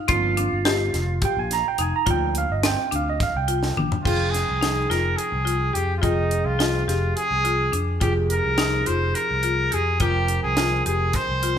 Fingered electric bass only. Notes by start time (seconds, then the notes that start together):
0.09 G1
0.53 G1
0.94 F1
1.37 A#1
1.78 F1
2.06 D2
2.50 G1
2.92 D2
3.35 C2
3.77 A#1
4.05 F1
4.49 C2
4.90 F1
5.32 C2
5.75 F2
6.03 F1
6.44 C2
6.87 F1
7.31 C2
7.72 F2
8.01 F1
8.45 C2
8.88 F1
9.31 C2
9.73 F2
10.00 F1
10.44 C2
10.86 F1
11.29 C2